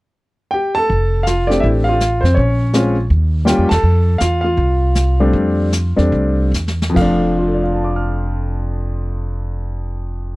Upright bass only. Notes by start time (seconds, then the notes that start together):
0.90 F1
1.63 A1
2.23 F2
2.37 A#1
3.10 D#2
3.58 F2
3.71 E2
3.83 F2
4.21 E2
4.57 C2
5.33 F2
5.98 E2
6.12 C2
6.52 E2
6.96 F1